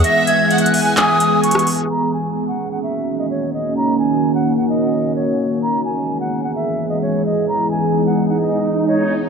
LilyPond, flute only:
\new Staff \with { instrumentName = "Flute" } { \time 4/4 \key ees \phrygian \tempo 4 = 129 bes'''8 gis'''8. ges'''8 ges'''16 ees'''4 des'''4 | bes''8 aes''8. ges''8 ges''16 fes''8. ees''16 des''8 ees''8 | bes''8 aes''8. ges''8 ges''16 ees''4 des''4 | bes''8 gis''8. ges''8 ges''16 e''8. ees''16 des''8 ees''8 |
bes''8 gis''8. ges''8 ges''16 ees''4 des''4 | }